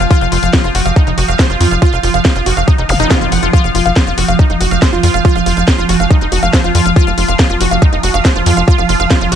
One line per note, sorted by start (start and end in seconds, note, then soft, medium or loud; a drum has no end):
0.00 3.52 F3 medium
0.11 0.14 F4 loud
0.11 kick loud
0.11 closed hi-hat medium
0.21 0.28 F1 medium
0.21 0.26 F5 medium
0.21 closed hi-hat soft
0.32 0.39 F1 loud
0.32 0.37 F4 medium
0.32 open hi-hat loud
0.43 0.49 F1 medium
0.43 0.48 F5 medium
0.43 closed hi-hat medium
0.53 0.57 F4 medium
0.53 kick loud
0.53 snare loud
0.53 closed hi-hat medium
0.64 0.71 F1 medium
0.64 0.69 F4 medium
0.64 closed hi-hat soft
0.75 0.81 F1 loud
0.75 0.78 F#4 medium
0.75 open hi-hat loud
0.86 0.92 F1 loud
0.86 0.89 F5 medium
0.86 closed hi-hat medium
0.96 1.01 D#4 medium
0.96 kick loud
0.96 closed hi-hat medium
1.07 1.14 F1 medium
1.07 1.10 D#4 medium
1.07 closed hi-hat soft
1.18 1.24 F1 loud
1.18 1.21 F#4 medium
1.18 open hi-hat loud
1.28 1.35 F1 medium
1.28 1.34 F5 medium
1.28 closed hi-hat medium
1.39 1.42 C5 medium
1.39 kick loud
1.39 snare loud
1.39 closed hi-hat medium
1.50 1.56 F1 medium
1.50 1.58 F4 medium
1.50 closed hi-hat soft
1.61 1.67 F2 loud
1.61 1.68 F4 medium
1.61 open hi-hat loud
1.71 1.78 F1 medium
1.71 1.74 F5 medium
1.71 closed hi-hat medium
1.82 1.85 F4 loud
1.82 kick loud
1.82 closed hi-hat medium
1.93 1.99 F1 medium
1.93 1.98 F5 medium
1.93 closed hi-hat soft
2.03 2.10 F1 loud
2.03 2.09 F4 medium
2.03 open hi-hat loud
2.14 2.21 F1 medium
2.14 2.19 F5 medium
2.14 closed hi-hat medium
2.25 2.28 F4 medium
2.25 kick loud
2.25 snare loud
2.25 closed hi-hat medium
2.36 2.42 F1 medium
2.36 2.41 F4 medium
2.36 closed hi-hat soft
2.46 2.53 F1 loud
2.46 2.49 F#4 medium
2.46 open hi-hat loud
2.57 2.64 F1 medium
2.57 2.60 F5 medium
2.57 closed hi-hat medium
2.68 2.73 D#4 medium
2.68 kick loud
2.68 closed hi-hat medium
2.78 2.85 F1 medium
2.78 2.82 D#4 medium
2.78 closed hi-hat soft
2.89 2.96 F1 loud
2.89 2.94 F5 medium
2.89 open hi-hat loud
2.89 zap medium
3.00 3.06 F1 loud
3.00 3.05 D#4 loud
3.00 closed hi-hat medium
3.11 3.18 F4 medium
3.11 kick loud
3.11 snare loud
3.11 closed hi-hat medium
3.21 3.28 F1 medium
3.21 3.27 F4 medium
3.21 closed hi-hat soft
3.32 3.39 F1 loud
3.32 3.40 F#5 medium
3.32 open hi-hat loud
3.43 3.49 F1 medium
3.43 3.48 F4 medium
3.43 closed hi-hat medium
3.53 9.35 F3 medium
3.53 3.57 F4 loud
3.53 kick loud
3.53 closed hi-hat medium
3.64 3.71 F1 medium
3.64 3.69 F5 medium
3.64 closed hi-hat soft
3.75 3.81 F1 loud
3.75 3.80 F4 medium
3.75 open hi-hat loud
3.86 3.92 F1 loud
3.86 3.91 F5 medium
3.86 closed hi-hat medium
3.96 3.99 F4 medium
3.96 kick loud
3.96 snare loud
3.96 closed hi-hat medium
4.07 4.14 F1 medium
4.07 4.12 F4 medium
4.07 closed hi-hat soft
4.18 4.24 F1 loud
4.18 4.21 F#4 medium
4.18 open hi-hat loud
4.28 4.35 F1 medium
4.28 4.32 F5 medium
4.28 closed hi-hat medium
4.39 4.44 D#4 medium
4.39 kick loud
4.39 closed hi-hat medium
4.50 4.56 F1 medium
4.50 4.53 D#4 medium
4.50 closed hi-hat soft
4.61 4.67 F1 loud
4.61 4.64 F#4 medium
4.61 open hi-hat loud
4.71 4.78 F1 medium
4.71 4.77 F5 medium
4.71 closed hi-hat medium
4.82 4.85 C5 medium
4.82 kick loud
4.82 snare loud
4.82 closed hi-hat medium
4.93 4.99 F1 medium
4.93 5.01 F4 medium
4.93 closed hi-hat soft
5.03 5.10 F2 loud
5.03 5.11 F4 medium
5.03 open hi-hat loud
5.14 5.21 F1 medium
5.14 5.17 F5 medium
5.14 closed hi-hat medium
5.25 5.28 F4 loud
5.25 kick loud
5.25 closed hi-hat medium
5.36 5.42 F1 medium
5.36 5.41 F5 medium
5.36 closed hi-hat soft
5.46 5.53 F1 loud
5.46 5.52 F4 medium
5.46 open hi-hat loud
5.57 5.64 F1 medium
5.57 5.62 F5 medium
5.57 closed hi-hat medium
5.68 5.71 F4 medium
5.68 kick loud
5.68 snare loud
5.68 closed hi-hat medium
5.78 5.85 F1 medium
5.78 5.84 F4 medium
5.78 closed hi-hat soft
5.89 5.96 F1 loud
5.89 5.92 F#4 medium
5.89 open hi-hat loud
6.00 6.06 F1 medium
6.00 6.03 F5 medium
6.00 closed hi-hat medium
6.11 6.16 D#4 medium
6.11 kick loud
6.11 closed hi-hat medium
6.21 6.28 F1 medium
6.21 6.24 D#4 medium
6.21 closed hi-hat soft
6.32 6.39 F1 loud
6.32 6.35 F#4 medium
6.32 open hi-hat loud
6.43 6.49 F1 medium
6.43 6.48 F5 medium
6.43 closed hi-hat medium
6.53 6.57 C5 medium
6.53 kick loud
6.53 snare loud
6.53 closed hi-hat medium
6.64 6.71 F1 medium
6.64 6.72 F4 medium
6.64 closed hi-hat soft
6.75 6.81 F2 loud
6.75 6.83 F4 medium
6.75 open hi-hat loud
6.86 6.92 F1 medium
6.86 6.89 F5 medium
6.86 closed hi-hat medium
6.96 6.99 F4 loud
6.96 kick loud
6.96 closed hi-hat medium
7.07 7.14 F1 medium
7.07 7.12 F5 medium
7.07 closed hi-hat soft
7.18 7.24 F1 loud
7.18 7.23 F4 medium
7.18 open hi-hat loud
7.28 7.35 F1 loud
7.28 7.34 F5 medium
7.28 closed hi-hat medium
7.39 7.42 F4 medium
7.39 kick loud
7.39 snare loud
7.39 closed hi-hat medium
7.50 7.56 F1 medium
7.50 7.55 F4 medium
7.50 closed hi-hat soft
7.61 7.67 F1 loud
7.61 7.64 F#4 medium
7.61 open hi-hat loud
7.71 7.78 F1 medium
7.71 7.74 F5 medium
7.71 closed hi-hat medium
7.82 7.87 D#4 medium
7.82 kick loud
7.82 closed hi-hat medium
7.93 7.99 F1 medium
7.93 7.96 D#4 medium
7.93 closed hi-hat soft
8.03 8.10 F1 loud
8.03 8.07 F#4 medium
8.03 open hi-hat loud
8.14 8.21 F1 medium
8.14 8.19 F5 medium
8.14 closed hi-hat medium
8.25 8.28 C5 medium
8.25 kick loud
8.25 snare loud
8.25 closed hi-hat medium
8.36 8.42 F1 medium
8.36 8.43 F4 medium
8.36 closed hi-hat soft
8.46 8.53 F2 loud
8.46 8.54 F4 medium
8.46 open hi-hat loud
8.57 8.64 F1 medium
8.57 8.60 F5 medium
8.57 closed hi-hat medium
8.68 8.71 F4 loud
8.68 kick loud
8.68 closed hi-hat soft
8.78 8.85 F1 medium
8.78 8.84 F5 medium
8.78 closed hi-hat soft
8.89 8.96 F1 loud
8.89 8.94 F4 medium
8.89 open hi-hat loud
9.00 9.06 F1 medium
9.00 9.05 F5 medium
9.00 closed hi-hat medium
9.11 9.14 F4 medium
9.11 kick loud
9.11 snare loud
9.11 closed hi-hat medium
9.21 9.28 F1 medium
9.21 9.26 F4 medium
9.21 closed hi-hat soft
9.32 9.35 F1 loud
9.32 9.35 F#4 medium
9.32 open hi-hat loud